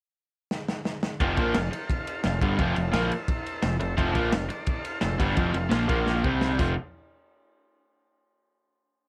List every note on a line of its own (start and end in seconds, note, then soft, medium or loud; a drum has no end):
0.51 snare medium
0.68 snare medium
0.85 snare medium
1.03 snare loud
1.20 1.37 F1 medium
1.20 1.38 F2 medium
1.20 1.38 C3 loud
1.20 1.38 F3 medium
1.20 1.37 A4 loud
1.20 1.37 C5 loud
1.20 1.37 F5 loud
1.20 kick loud
1.20 ride loud
1.37 1.54 A#1 medium
1.37 1.55 A#2 loud
1.37 1.55 F3 loud
1.37 1.56 A#3 loud
1.37 1.53 A4 medium
1.37 1.54 C5 medium
1.37 1.54 F5 loud
1.37 kick loud
1.37 ride medium
1.54 1.72 F1 medium
1.54 1.70 F2 medium
1.54 1.70 C3 medium
1.54 1.70 A4 medium
1.54 1.70 C5 medium
1.54 1.72 F5 loud
1.54 snare loud
1.54 ride loud
1.71 1.86 A4 medium
1.71 1.86 C5 medium
1.71 1.88 G5 medium
1.71 muted overdriven electric guitar stroke medium
1.71 ride medium
1.87 2.03 A4 medium
1.87 2.03 C5 medium
1.87 2.02 F5 loud
1.87 kick loud
1.87 ride loud
2.03 2.22 A4 loud
2.03 2.22 C5 medium
2.03 2.22 F5 loud
2.03 ride medium
2.23 2.41 F1 medium
2.23 2.39 F2 medium
2.23 2.39 C3 medium
2.23 2.40 A4 loud
2.23 2.39 C5 loud
2.23 2.40 F5 loud
2.23 snare loud
2.23 ride loud
2.40 2.58 G1 loud
2.40 2.58 G2 medium
2.40 2.59 D3 medium
2.40 2.59 G3 medium
2.40 2.56 A4 medium
2.40 2.56 C5 medium
2.40 2.56 F5 loud
2.40 kick loud
2.40 ride medium
2.57 2.75 F1 loud
2.57 2.76 F2 medium
2.57 2.76 C3 loud
2.57 2.77 F3 loud
2.57 2.74 A4 loud
2.57 2.74 C5 loud
2.57 2.74 F5 loud
2.57 kick loud
2.57 ride loud
2.75 2.93 F1 medium
2.75 2.91 F2 medium
2.75 2.91 C3 medium
2.75 2.89 A4 medium
2.75 2.90 C5 medium
2.75 2.90 F5 medium
2.75 ride medium
2.90 3.10 A#1 medium
2.90 3.10 A#2 medium
2.90 3.10 F3 medium
2.90 3.10 A#3 medium
2.90 3.08 A4 medium
2.90 3.06 C5 medium
2.90 3.09 F5 medium
2.90 snare loud
2.90 ride loud
3.07 3.23 A4 medium
3.07 3.24 C5 medium
3.07 3.24 E5 medium
3.07 ride medium
3.25 3.41 A4 medium
3.25 3.42 C5 medium
3.25 3.41 E5 medium
3.25 kick loud
3.25 ride loud
3.42 3.57 A4 loud
3.42 3.57 C5 loud
3.42 3.57 E5 loud
3.46 ride medium
3.58 3.77 A4 loud
3.58 3.77 C5 loud
3.58 3.77 E5 loud
3.63 3.80 F1 medium
3.63 3.77 F2 medium
3.63 3.77 C3 medium
3.63 snare loud
3.63 ride medium
3.80 3.97 F1 medium
3.80 3.94 F2 medium
3.80 3.94 C3 medium
3.80 3.96 A4 medium
3.80 3.95 C5 medium
3.80 3.97 E5 loud
3.80 ride medium
3.96 4.14 F1 medium
3.96 4.15 F2 loud
3.96 4.13 C3 medium
3.96 4.13 F3 loud
3.96 4.14 A4 loud
3.96 4.13 C5 loud
3.96 4.13 F5 loud
3.96 kick loud
3.96 ride loud
4.13 4.31 A#1 loud
4.13 4.31 A#2 loud
4.13 4.32 F3 loud
4.13 4.32 A#3 loud
4.13 4.29 A4 medium
4.13 4.29 C5 medium
4.13 4.31 F5 medium
4.13 kick loud
4.13 ride medium
4.30 4.49 F1 medium
4.30 4.46 F2 medium
4.30 4.46 C3 medium
4.30 4.48 A4 medium
4.30 4.47 C5 medium
4.30 4.49 F5 medium
4.30 snare loud
4.30 ride medium
4.48 4.64 A4 medium
4.48 4.64 C5 medium
4.48 4.64 D5 medium
4.48 muted overdriven electric guitar stroke medium
4.48 muted picked electric bass stroke soft
4.48 ride medium
4.65 4.80 A4 medium
4.65 4.80 C5 medium
4.65 4.83 D5 medium
4.65 kick loud
4.65 ride loud
4.81 4.99 A4 loud
4.81 4.99 C5 medium
4.81 4.99 F5 loud
4.81 ride medium
5.00 5.19 F1 medium
5.00 5.16 F2 medium
5.00 5.16 C3 medium
5.00 5.16 A4 loud
5.00 5.16 C5 loud
5.00 5.18 E5 loud
5.00 snare loud
5.00 ride loud
5.17 5.36 G1 loud
5.17 5.36 G2 medium
5.17 5.36 D3 medium
5.17 5.37 G3 medium
5.17 5.33 A4 loud
5.17 5.33 C5 medium
5.17 5.33 F5 loud
5.17 kick loud
5.17 ride medium
5.34 5.53 F1 loud
5.34 5.53 F2 loud
5.34 5.53 C3 loud
5.34 5.54 F3 loud
5.34 5.52 A4 loud
5.34 5.51 C5 loud
5.34 5.52 F5 loud
5.34 kick loud
5.34 ride loud
5.52 5.70 F1 medium
5.52 5.68 F2 medium
5.52 5.68 C3 medium
5.52 5.70 A4 medium
5.52 5.70 C5 medium
5.52 5.70 F5 loud
5.52 ride medium
5.69 5.87 A#1 medium
5.69 5.87 A#2 medium
5.69 5.87 F3 medium
5.69 5.88 A#3 loud
5.69 5.89 A4 medium
5.69 5.89 C5 medium
5.69 5.89 F5 loud
5.69 snare loud
5.69 ride medium
5.88 6.22 A#1 loud
5.88 6.23 A#2 medium
5.88 6.23 F3 medium
5.88 6.24 A#3 medium
5.88 6.23 F4 medium
5.88 6.23 A#4 medium
5.88 6.23 F5 medium
5.88 kick loud
5.88 ride medium
6.06 snare medium
6.24 6.57 C2 medium
6.24 6.58 C3 loud
6.24 6.59 G3 loud
6.24 6.59 C4 loud
6.24 6.58 G4 medium
6.24 6.58 C5 medium
6.24 6.58 G5 medium
6.24 kick loud
6.41 snare medium
6.58 6.75 F1 loud
6.58 6.72 F2 medium
6.58 6.73 C3 medium
6.58 6.73 F3 loud
6.58 6.77 A4 medium
6.58 6.77 C5 medium
6.58 6.76 F5 loud
6.58 kick loud
6.58 crash loud